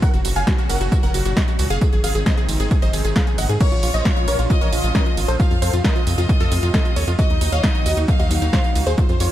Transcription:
0.02 A#2 C#3 F#3 C#4 F#4 A#4 F#5, kick, closed hi-hat, tambourine
0.14 F#1 F#4, closed hi-hat, tambourine
0.25 F#1 F#4, open hi-hat, ride, tambourine
0.36 F#1 F5 G#5, closed hi-hat, tambourine
0.47 F#4, kick, snare, closed hi-hat, tambourine
0.58 F#4, closed hi-hat, tambourine
0.69 F#1 A#4 F#5, open hi-hat, ride, tambourine
0.81 F#1 F#4, closed hi-hat, tambourine
0.92 F#4, kick, closed hi-hat, tambourine
1.03 F#1 A#4 F#5, closed hi-hat, tambourine
1.14 F#1 F#4, open hi-hat, ride, tambourine
1.25 F#1 F#4, closed hi-hat, tambourine
1.37 F#4 D#5, kick, snare, closed hi-hat, tambourine
1.48 F#4, closed hi-hat, tambourine
1.59 C#2 F#4, open hi-hat, ride, tambourine
1.70 F#1 G#4 F5, closed hi-hat, tambourine
1.81 G#2 C3 D#3 C4 D#4 G#4, kick, closed hi-hat, tambourine
1.93 G#1 G#4, closed hi-hat, tambourine
2.04 G#1 G#4 F5, open hi-hat, ride, tambourine
2.15 G#1 G#4, closed hi-hat, tambourine
2.26 C5 D#5, kick, snare, closed hi-hat, tambourine
2.37 G#4, closed hi-hat, tambourine
2.49 G#1, open hi-hat, ride, tambourine
2.60 G#1 G#4, closed hi-hat, tambourine
2.71 G#4, kick, closed hi-hat, tambourine
2.82 G#1 C5 D#5, closed hi-hat, tambourine
2.93 G#1 G#4, open hi-hat, ride, tambourine
3.05 G#1 G#4, closed hi-hat, tambourine
3.16 G#4 F5, kick, snare, closed hi-hat, tambourine
3.27 G#4, closed hi-hat, tambourine
3.38 G#1 D#5 F#5, open hi-hat, ride, tambourine
3.49 G#2 G#4, closed hi-hat, tambourine
3.60 A#2 C#3 F3 C#4 F4 A#4 C#5, kick, closed hi-hat, crash, tambourine
3.72 A#1 F4, closed hi-hat, tambourine
3.83 A#1 F4, open hi-hat, ride, tambourine
3.94 A#1 C5 D#5, closed hi-hat, tambourine
4.05 F4, kick, snare, closed hi-hat, tambourine
4.16 F4, closed hi-hat, tambourine
4.28 A#1 A#4 C#5, open hi-hat, ride, tambourine
4.39 A#1 F4, closed hi-hat, tambourine
4.50 F4 D#5, kick, closed hi-hat, tambourine
4.61 A#1 A#4 C#5, closed hi-hat, tambourine
4.72 A#1 F4, open hi-hat, ride, tambourine
4.84 A#1 F4, closed hi-hat, tambourine
4.95 C#4 A#4, kick, snare, closed hi-hat, tambourine
5.06 F4, closed hi-hat, tambourine
5.17 G#1 F4, open hi-hat, ride, tambourine
5.28 A#1 A4 C5, closed hi-hat, tambourine
5.39 A2 C3 C4 F4 F5, kick, closed hi-hat, tambourine
5.51 F2 F4, closed hi-hat, tambourine
5.62 F2 A4 C5, open hi-hat, ride, tambourine
5.73 F2 F4, closed hi-hat, tambourine
5.84 F4 A#4 D#5, kick, snare, closed hi-hat, tambourine
5.96 F4, closed hi-hat, tambourine
6.07 F2, open hi-hat, ride, tambourine
6.18 F2 F4, closed hi-hat, tambourine
6.29 F4, kick, closed hi-hat, tambourine
6.40 F2 F4 A4, closed hi-hat, tambourine
6.52 F2 F4, open hi-hat, ride, tambourine
6.63 F2 F4, closed hi-hat, tambourine
6.74 F4 A4, kick, snare, closed hi-hat, tambourine
6.85 F4, closed hi-hat, tambourine
6.96 D#2 A4 C#5, open hi-hat, ride, tambourine
7.07 F2 F4, closed hi-hat, tambourine
7.19 A#2 D#3 F#3 D#4 F#4 D#5, kick, closed hi-hat, tambourine
7.30 D#2 D#4, closed hi-hat, tambourine
7.41 D#2 D#4, open hi-hat, ride, tambourine
7.52 D#2 C#5 F5, closed hi-hat, tambourine
7.64 D#4, kick, snare, closed hi-hat, tambourine
7.75 D#4, closed hi-hat, tambourine
7.86 D#2 F#4 D#5, open hi-hat, ride, tambourine
7.97 D#2 D#4, closed hi-hat, tambourine
8.08 D#4 F5, kick, closed hi-hat, tambourine
8.19 D#2 F#4 D#5, closed hi-hat, tambourine
8.30 D#2 D#4, open hi-hat, ride, tambourine
8.42 D#2 D#4, closed hi-hat, tambourine
8.53 D#4 C5, kick, snare, closed hi-hat, tambourine
8.64 D#4, closed hi-hat, tambourine
8.75 C#2 D#4, open hi-hat, ride, tambourine
8.86 D#2 G#4 C5, closed hi-hat, tambourine
8.98 G#2 C3 F3 C4 F4 C5, kick, closed hi-hat, tambourine
9.09 F2 F4, closed hi-hat, tambourine
9.20 F2 F4 C#5, open hi-hat, ride, tambourine

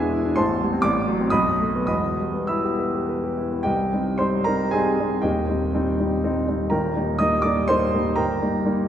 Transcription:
Already playing: E1 E2 B2 G#3 E4 G#4 B4 D5 E5 G#5 B5 D6
0.00 D4
0.13 E4
0.25 D4
0.36 A1 C5 A5 C6
0.49 E2
0.61 G3
0.72 C4
0.82 A1 D5 D6
0.96 A2
1.08 F#3
1.21 C4
1.30 B1 D#5 B5 D#6
1.47 F#2
1.60 A3
1.75 B3
1.86 E1 E2 D#5 B5 D#6
2.04 B2
2.19 G3
2.34 B3
2.47 E4 E5 B5 E6
2.64 G4
2.79 B4
2.94 G4
3.09 B4
3.23 G4
3.38 E4
3.52 B3
3.63 C2 G4 D#5 G5
3.93 G3 C4 D#4
4.18 G3 C4 D#4 C5 C6
4.44 G3 C4 D#4 A#4 A#5
4.71 G3 C4 D#4 G#4 G#5
5.00 G3 C4 D#4
5.22 D#1 D#2 G4 D#5 G5
5.49 G3 C4 D#4
5.74 G3 C4 D#4
6.00 G3 C4 D#4
6.23 G3 C4 D#4
6.48 G3 C4 D#4
6.70 D#1 D#2 A#4 G5 A#5
6.96 G3 A#3 D#4
7.19 G3 A#3 D#4 D#5 D#6
7.42 G3 A#3 D#4 D5 D6
7.68 G3 A#3 D#4 C5 C6
7.94 G3 A#3 D#4
8.16 G1 A#4 G5 A#5
8.42 G3 A#3 D#4
8.66 G3 A#3 D#4

